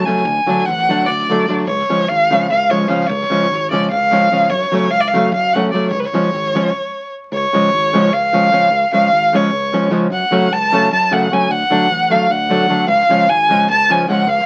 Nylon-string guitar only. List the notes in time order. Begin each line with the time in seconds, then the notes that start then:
0.05 C#3 F#3 A3 C#4
0.46 D3 F#3 A3 D4
0.89 D3 F#3 A3 D4
1.30 D3 F#3 A3 D4
1.49 D3 F#3 A3 D4
1.89 C#3 F3 G#3 C#4
2.30 C#3 F3 G#3 C#4
2.69 C#3 F3 G#3 C#4
2.88 C#3 F3 G#3 C#4
3.30 C#3 F3 G#3 C#4
3.71 C#3 F3 G#3 C#4
4.11 C#3 F3 G#3 C#4
4.31 C#3 F3 G#3 C#4
4.71 C#3 F#3 A3 C#4
5.14 C#3 F#3 A3 C#4
5.54 C#3 F#3 A3 C#4
5.73 C#3 F#3 A3 C#4
6.13 C#3 F3 G#3 C#4
6.55 C#3 F3 G#3 C#4
7.53 C#3 F3 G#3 C#4
7.93 C#3 F3 G#3 C#4
8.33 C#3 F3 G#3 C#4
8.52 C#3 F3 G#3 C#4
8.92 C#3 F3 G#3 C#4
9.33 C#3 F3 G#3 C#4
9.73 C#3 F3 G#3 C#4
9.90 C#3 F3 G#3 C#4
10.31 C#3 F#3 A3 C#4
10.72 C#3 F#3 A3 C#4
11.11 C#3 F#3 A3 C#4
11.31 C#3 F#3 A3 C#4
11.70 D3 F#3 A3 D4
12.10 D3 F#3 A3 D4
12.49 D3 F#3 A3 D4
12.69 D3 F#3 A3 D4
13.09 C#3 F3 G#3 C#4
13.49 C#3 F3 G#3 C#4
13.89 C#3 F3 G#3 C#4
14.08 C#3 F3 G#3 C#4